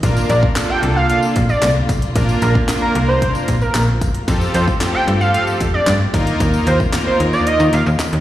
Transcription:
0.03 0.23 A#1 loud
0.03 4.24 D3 medium
0.03 0.46 A#3 loud
0.03 4.24 A#3 medium
0.03 0.46 D4 medium
0.03 0.46 F4 medium
0.03 4.24 F4 medium
0.03 0.46 A#4 loud
0.03 kick loud
0.03 closed hi-hat loud
0.03 tambourine medium
0.16 tambourine medium
0.29 0.50 A#1 loud
0.29 0.40 D5 medium
0.29 closed hi-hat medium
0.29 tambourine medium
0.43 kick loud
0.56 1.42 A#3 medium
0.56 1.42 D4 medium
0.56 1.42 F4 medium
0.56 1.42 A4 medium
0.56 snare medium
0.56 clap loud
0.56 closed hi-hat medium
0.56 tambourine medium
0.70 0.80 G5 medium
0.83 1.13 C2 medium
0.83 closed hi-hat medium
0.96 1.06 F5 medium
1.09 1.20 F5 medium
1.09 closed hi-hat loud
1.22 tambourine medium
1.36 1.56 A#1 loud
1.36 kick loud
1.36 closed hi-hat medium
1.36 tambourine soft
1.49 1.70 D5 medium
1.49 tambourine soft
1.62 1.82 C2 loud
1.62 snare medium
1.62 clap loud
1.62 closed hi-hat medium
1.62 tambourine medium
1.89 2.09 B1 loud
1.89 kick loud
1.89 closed hi-hat medium
1.89 tambourine medium
2.02 closed hi-hat medium
2.02 tambourine soft
2.15 2.36 A#1 loud
2.15 2.58 A#3 loud
2.15 2.59 D4 medium
2.15 2.59 F4 medium
2.15 2.59 A#4 loud
2.15 kick loud
2.15 closed hi-hat loud
2.15 tambourine medium
2.29 tambourine medium
2.42 2.62 A#1 loud
2.42 2.52 A#4 medium
2.42 closed hi-hat medium
2.42 tambourine medium
2.55 kick loud
2.68 3.55 A#3 medium
2.68 3.55 D4 medium
2.68 3.55 F4 medium
2.68 3.55 A#4 medium
2.68 snare medium
2.68 clap loud
2.68 closed hi-hat medium
2.68 tambourine medium
2.82 2.92 A#4 medium
2.95 3.25 C2 medium
2.95 closed hi-hat medium
3.08 3.19 C5 medium
3.22 3.32 C5 medium
3.22 kick loud
3.22 closed hi-hat loud
3.35 tambourine medium
3.48 3.68 A#1 medium
3.48 kick medium
3.48 closed hi-hat loud
3.48 tambourine soft
3.61 3.82 A#4 medium
3.61 tambourine soft
3.74 4.03 A#1 loud
3.74 snare medium
3.74 clap loud
3.74 closed hi-hat loud
3.74 tambourine medium
4.01 4.21 F#1 medium
4.01 kick loud
4.01 closed hi-hat medium
4.01 tambourine medium
4.15 closed hi-hat medium
4.28 4.48 F2 loud
4.28 6.12 F3 medium
4.28 6.12 A3 medium
4.28 4.71 C4 loud
4.28 4.71 F4 medium
4.28 4.71 G4 medium
4.28 6.12 G4 medium
4.28 4.71 A4 loud
4.28 kick loud
4.28 closed hi-hat loud
4.28 tambourine medium
4.41 tambourine medium
4.54 4.75 F2 loud
4.54 4.65 C5 medium
4.54 closed hi-hat medium
4.54 tambourine medium
4.68 kick loud
4.68 tambourine soft
4.81 5.67 C4 medium
4.81 5.67 F4 medium
4.81 5.67 G4 medium
4.81 5.67 A4 medium
4.81 snare medium
4.81 clap loud
4.81 closed hi-hat medium
4.81 tambourine medium
4.94 5.05 G5 medium
5.08 5.38 G2 loud
5.08 closed hi-hat medium
5.21 5.31 F5 medium
5.21 tambourine soft
5.34 5.44 F5 medium
5.34 closed hi-hat loud
5.47 tambourine medium
5.61 5.81 F2 medium
5.61 kick medium
5.61 closed hi-hat loud
5.61 tambourine soft
5.74 5.95 D5 medium
5.87 6.07 G2 loud
5.87 snare medium
5.87 clap loud
5.87 closed hi-hat medium
5.87 tambourine medium
6.13 6.34 D#2 loud
6.13 8.20 D#3 medium
6.13 6.78 A#3 loud
6.13 8.20 A#3 medium
6.13 6.78 D#4 loud
6.13 8.20 F4 medium
6.13 6.78 F4 medium
6.13 6.78 A#4 loud
6.13 kick loud
6.13 closed hi-hat medium
6.13 tambourine medium
6.27 closed hi-hat medium
6.27 tambourine soft
6.40 6.60 D#2 loud
6.40 kick loud
6.40 closed hi-hat loud
6.40 tambourine medium
6.54 tambourine medium
6.66 6.87 D#2 loud
6.66 6.77 C5 medium
6.66 closed hi-hat medium
6.66 tambourine medium
6.80 kick loud
6.80 tambourine soft
6.93 7.79 A#3 medium
6.93 7.79 D#4 medium
6.93 7.80 F4 medium
6.93 7.80 A#4 medium
6.93 snare medium
6.93 clap loud
6.93 closed hi-hat medium
6.93 tambourine medium
7.07 7.17 C5 medium
7.20 7.40 D#2 medium
7.20 closed hi-hat medium
7.33 7.44 D5 medium
7.33 tambourine soft
7.47 7.67 D#5 medium
7.47 closed hi-hat loud
7.60 7.70 D#3 loud
7.60 tambourine medium
7.73 7.83 D#2 loud
7.73 7.83 F5 medium
7.73 closed hi-hat medium
7.73 tambourine soft
7.86 7.96 D#2 loud
7.86 tambourine soft
7.99 snare medium
7.99 clap loud
7.99 closed hi-hat medium
7.99 tambourine medium
8.13 8.20 D#2 medium
8.13 closed hi-hat medium

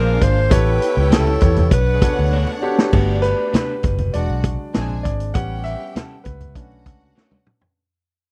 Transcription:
0.00 0.17 A#1 loud
0.00 0.10 F3 medium
0.00 0.43 A#3 medium
0.00 0.11 C4 medium
0.00 0.11 D4 medium
0.00 0.44 D4 medium
0.00 0.50 D4 loud
0.00 0.44 F4 medium
0.00 0.11 G#4 medium
0.00 0.44 G#4 medium
0.00 0.24 A#4 loud
0.00 0.45 C5 medium
0.00 0.50 C5 medium
0.00 0.50 F5 loud
0.21 0.48 G#1 medium
0.21 0.54 C5 loud
0.21 kick medium
0.21 closed hi-hat medium
0.49 0.78 A1 loud
0.49 0.90 B3 loud
0.49 0.90 E4 loud
0.49 1.70 E4 loud
0.49 0.91 G4 loud
0.49 0.91 A4 loud
0.49 1.12 B4 loud
0.49 1.69 C#5 medium
0.49 0.92 C#5 loud
0.49 1.70 G5 loud
0.49 kick loud
0.49 closed hi-hat loud
0.49 low conga medium
0.67 muted conga soft
0.82 closed hi-hat medium
0.95 1.36 C#2 medium
0.95 1.36 B3 medium
0.95 1.36 E4 medium
0.95 1.36 G4 medium
0.95 1.37 A4 medium
0.95 1.37 C#5 medium
1.10 1.31 G3 medium
1.10 1.31 C#4 medium
1.10 1.31 E4 medium
1.10 1.32 A4 medium
1.10 1.69 A4 medium
1.10 snare loud
1.10 closed hi-hat loud
1.10 muted conga soft
1.10 high conga medium
1.27 muted conga soft
1.40 1.68 E2 medium
1.40 1.71 B3 medium
1.40 1.71 E4 medium
1.40 1.72 G4 medium
1.40 1.72 A4 medium
1.40 1.73 C#5 medium
1.40 kick medium
1.40 closed hi-hat medium
1.40 low conga medium
1.56 closed hi-hat soft
1.56 high conga medium
1.56 low conga medium
1.71 1.98 B1 loud
1.71 2.90 D4 medium
1.71 2.59 B4 loud
1.71 2.90 C#5 medium
1.71 2.90 F#5 loud
1.71 kick loud
1.71 closed hi-hat medium
1.94 2.01 G#4 medium
2.01 2.55 B3 medium
2.01 2.55 D4 medium
2.01 2.56 F#4 medium
2.01 2.56 A4 medium
2.01 2.57 C#5 medium
2.01 kick medium
2.01 closed hi-hat medium
2.01 high conga medium
2.19 2.44 D2 medium
2.32 2.52 A3 medium
2.32 2.53 D4 medium
2.32 2.53 F#4 medium
2.32 2.53 C#5 medium
2.47 muted conga soft
2.61 2.89 B3 medium
2.61 2.89 D4 medium
2.61 2.89 F#4 medium
2.61 3.19 G4 loud
2.61 2.90 A4 medium
2.61 2.90 C#5 medium
2.79 snare loud
2.92 3.33 G1 loud
2.92 4.10 A3 medium
2.92 4.10 B3 medium
2.92 3.82 D4 loud
2.92 4.09 F#4 medium
2.92 3.82 D5 loud
2.92 kick loud
2.92 crash loud
2.92 muted conga soft
2.92 low conga medium
3.22 4.16 B4 loud
3.22 closed hi-hat medium
3.53 3.73 B3 medium
3.53 3.73 D4 medium
3.53 3.73 F#4 medium
3.53 3.74 B4 medium
3.53 snare loud
3.53 closed hi-hat medium
3.53 high conga medium
3.83 4.10 F#1 medium
3.83 kick medium
3.83 closed hi-hat medium
3.83 low conga medium
3.98 closed hi-hat soft
3.98 high conga medium
3.98 low conga medium
4.13 4.28 E1 loud
4.13 4.71 F#3 soft
4.13 4.72 G#3 soft
4.13 4.72 D4 medium
4.13 4.44 F#4 medium
4.13 5.00 D5 medium
4.13 4.44 F#5 medium
4.13 closed hi-hat medium
4.13 muted conga soft
4.30 4.56 B1 medium
4.30 muted conga soft
4.44 kick loud
4.44 closed hi-hat medium
4.44 high conga medium
4.74 5.02 A#1 loud
4.74 4.94 F3 medium
4.74 5.14 G#3 medium
4.74 5.15 C4 soft
4.74 4.95 C4 medium
4.74 4.95 D4 medium
4.74 5.15 D4 medium
4.74 5.04 G#4 medium
4.74 4.95 G#4 medium
4.74 5.04 G#5 loud
4.74 snare loud
4.74 closed hi-hat medium
4.74 muted conga soft
4.89 high conga medium
5.03 5.31 G#1 medium
5.03 5.32 D5 medium
5.03 kick medium
5.03 closed hi-hat medium
5.20 closed hi-hat medium
5.34 5.74 A1 loud
5.34 5.75 G3 medium
5.34 5.75 B3 medium
5.34 5.76 C#4 medium
5.34 6.24 G4 medium
5.34 5.66 F#5 loud
5.34 6.24 G5 loud
5.34 kick loud
5.34 closed hi-hat medium
5.34 muted conga soft
5.34 low conga medium
5.64 6.27 E5 loud
5.64 closed hi-hat medium
5.95 6.15 G3 medium
5.95 6.15 C#4 medium
5.95 6.16 E4 medium
5.95 6.16 A4 medium
5.95 snare loud
5.95 closed hi-hat medium
5.95 high conga medium
6.24 6.56 C#2 loud
6.24 7.12 B4 medium
6.24 kick medium
6.24 closed hi-hat medium
6.24 low conga medium
6.41 closed hi-hat soft
6.41 high conga medium
6.41 low conga medium
6.55 6.86 B1 medium
6.55 7.43 A3 soft
6.55 7.43 C#4 medium
6.55 7.42 D4 medium
6.55 7.45 F#4 medium
6.55 7.45 F#5 loud
6.55 kick loud
6.55 closed hi-hat medium
6.72 muted conga soft
6.86 7.12 C#2 medium
6.86 kick medium
6.86 closed hi-hat medium
6.86 high conga medium
7.15 7.36 A3 medium
7.15 7.36 D4 medium
7.15 7.36 F#4 medium
7.15 7.37 C#5 medium
7.15 snare medium
7.15 muted conga soft
7.31 high tom medium
7.31 high conga medium
7.46 mid tom medium
7.61 floor tom medium

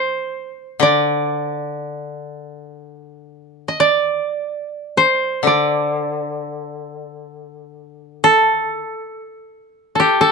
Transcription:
0.00 1.53 C5 medium
0.80 4.18 D3 soft
0.80 3.63 D5 medium
3.68 3.86 D#5 soft
3.80 5.40 D5 medium
4.97 6.69 C5 medium
5.43 8.81 D3 soft
5.47 7.20 D5 soft
8.24 9.95 A4 medium
9.95 10.20 A4 soft
10.00 10.32 G4 medium
10.21 10.32 A4 medium

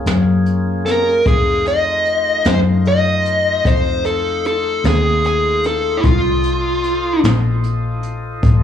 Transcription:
0.00 1.22 A#3 medium
0.00 1.22 C#4 medium
0.00 1.22 F4 medium
0.00 1.22 G#4 medium
0.06 1.22 F#2 medium
0.06 snare loud
0.06 closed hi-hat medium
0.46 closed hi-hat medium
0.86 1.27 A#4 medium
0.86 snare soft
0.86 closed hi-hat medium
1.25 2.42 F2 medium
1.25 6.00 A3 medium
1.25 6.00 D#4 medium
1.25 6.00 F4 medium
1.25 1.64 G#4 medium
1.25 6.00 C5 medium
1.25 kick loud
1.25 closed hi-hat medium
1.66 2.49 D#5 loud
1.66 closed hi-hat medium
2.05 closed hi-hat medium
2.45 3.61 F#2 medium
2.45 2.58 C5 medium
2.45 snare loud
2.45 closed hi-hat medium
2.85 3.69 D#5 loud
2.85 closed hi-hat medium
3.25 closed hi-hat medium
3.65 4.81 F2 medium
3.65 4.06 C5 medium
3.65 kick medium
3.65 closed hi-hat medium
4.05 4.46 A4 medium
4.05 closed hi-hat medium
4.45 4.83 A4 medium
4.45 closed hi-hat medium
4.84 6.00 D#2 medium
4.84 5.25 G#4 medium
4.84 snare loud
4.84 closed hi-hat medium
5.24 5.66 G#4 medium
5.24 closed hi-hat medium
5.64 5.99 A4 medium
5.64 closed hi-hat medium
5.97 6.04 E4 soft
6.02 7.20 C2 medium
6.02 8.63 F4 medium
6.02 7.20 F4 medium
6.02 8.63 A4 medium
6.02 8.63 C5 medium
6.02 8.63 D#5 medium
6.02 kick loud
6.02 closed hi-hat medium
6.43 closed hi-hat medium
6.84 closed hi-hat medium
7.24 8.40 A#1 medium
7.24 snare loud
7.24 closed hi-hat medium
7.64 closed hi-hat medium
8.03 closed hi-hat medium
8.43 8.63 A1 medium
8.43 kick loud
8.43 closed hi-hat medium

